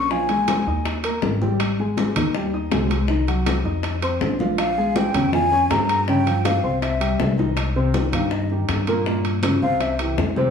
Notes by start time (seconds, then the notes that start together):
Already playing: A#1 C#6
0.11 F3 F4 F5 G#5, high bongo, high conga
0.29 G#3 G#4 G#5, high bongo, high conga, high timbale
0.48 high bongo, high conga, high timbale
0.67 D#2 D#4 D#5 D#6, high conga
0.85 high bongo, high conga, high timbale
1.04 A#3 A#4 A#5, high bongo, high conga, high timbale
1.22 G#1, high bongo, low bongo, high conga
1.41 G3 G4 G5, high bongo, high conga
1.60 high bongo, high conga, high timbale
1.79 G#3 G#4 G#5, high conga
1.97 high bongo, high conga, high timbale
2.16 D#2 D#3 D#4 D#5, high conga, low conga, high timbale
2.35 G3 G4 G5, high bongo, high conga
2.53 D#4 D#5 D#6, high conga
2.71 C2 G#3 G#4 G#5, high bongo, low bongo, high timbale, low timbale
2.90 high conga, high timbale
3.08 D#3 D#4 D#5, high bongo, high conga
3.27 F#3 F#4 F#5, high bongo, high conga, high timbale
3.46 high bongo, high conga, high timbale
3.65 F2 D#4 D#5 D#6, high conga
3.83 high bongo, high conga, high timbale
4.02 C4 C5 C6, high bongo, high conga, high timbale
4.21 A#1, high bongo, low bongo, high conga
4.39 F3 F4 F5, high bongo, high conga
4.58 F5, high bongo, high conga, high timbale
4.77 G#3 G#4 G#5, high conga
4.96 G5, high bongo, high conga, high timbale
5.14 F2 C#3 C#4 C#5, high conga, low conga, high timbale
5.33 F3 F4 F5 G#5, high bongo, high conga, low conga
5.52 C#4 C#5 C#6, high conga
5.70 G2 A#3 G#4 G#5 A#5, high bongo, low bongo, high conga, high timbale, low timbale
5.89 high timbale
6.08 C#3 C#4 C#5 G5, high bongo, high conga
6.26 F3 F4 F5, high bongo, high conga, high timbale
6.45 F5, high bongo, high conga, high timbale
6.63 C2 C4 C5 C6, high conga
6.82 E5, high bongo, high conga, high timbale
7.00 G3 G4 G5, high bongo, high conga, high timbale
7.19 C2, high bongo, low bongo, high conga
7.38 D#3 D#4 D#5, high bongo, high conga
7.57 high bongo, high conga, high timbale
7.76 C3 C4 C5, high conga
7.94 D#3 G4, high bongo, high conga, high timbale
8.13 G2 D#3 D#4 G4 F5, high conga, low conga, high timbale
8.31 D#5, high bongo, high conga
8.50 D#3 D#4 G4, high conga
8.69 G2, high bongo, low bongo, high conga, high timbale
8.87 A#2 A#3 A#4, high timbale
9.06 A#2 A#3 A#4, high bongo, high conga
9.24 high bongo, high conga, high timbale
9.43 C#3 C#4 F4, high bongo, high conga, high timbale
9.62 C2 C3 C4 C5 F5, high conga
9.80 E5, high bongo, high conga, high timbale
9.99 E3 E4 G4, high bongo, high conga, high timbale
10.18 F2, high bongo, low bongo, high conga
10.36 C3 C4 C5, high bongo, high conga